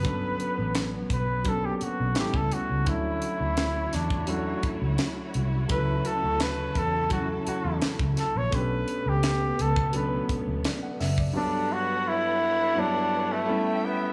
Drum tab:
HH |x-x-x-x-x-x-x-x-|x-x-x-x-x-x-x-x-|x-x-x-x-x-x-x-x-|x-x-x-x-x-x-x-o-|
SD |----o-------o---|----o-o-----o---|----o-------o-o-|----o-------o-o-|
BD |o-----o-o----o--|o------o--o-----|o-----o-o----o--|o------o--o----o|

HH |----------------|
SD |----------------|
BD |----------------|